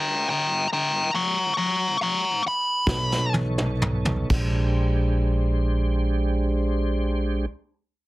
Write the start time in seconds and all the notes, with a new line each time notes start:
Already playing: G5 A#5
0.29 G5 A#5
0.73 G5 A#5
1.15 A#5 C#6
1.57 A#5 C#6
2.02 A#5 C#6
2.48 B5
2.87 B1 B3 D#4 A4 C#5, kick, snare
3.12 snare
3.34 high tom
3.58 mid tom
3.82 mid tom
4.05 floor tom
4.30 A#1 G#3 D4 G4 C5, kick, crash